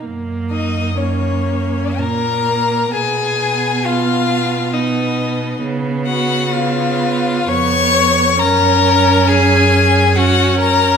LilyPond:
<<
  \new Staff \with { instrumentName = "Violin" } { \time 3/4 \key fis \major \tempo 4 = 66 r8 dis''8 cis''4 ais''4 | gis''4 eis''4 dis''4 | r8 fis''8 eis''4 cis'''4 | ais''4 gis''4 fis''8 ais''8 | }
  \new Staff \with { instrumentName = "Violin" } { \time 3/4 \key fis \major r8 dis'8 cis'4 ais'4 | gis'4 eis'4 dis'4 | r8 fis'8 eis'4 cis''4 | ais'4 gis'4 fis'8 ais'8 | }
  \new Staff \with { instrumentName = "Viola" } { \time 3/4 \key fis \major ais4 ais4 ais4 | b2 b4 | b4 b4 b4 | cis'2 cis'4 | }
  \new Staff \with { instrumentName = "Cello" } { \clef bass \time 3/4 \key fis \major fis,2 ais,4 | b,2. | cis2 eis,4 | fis,2. | }
>>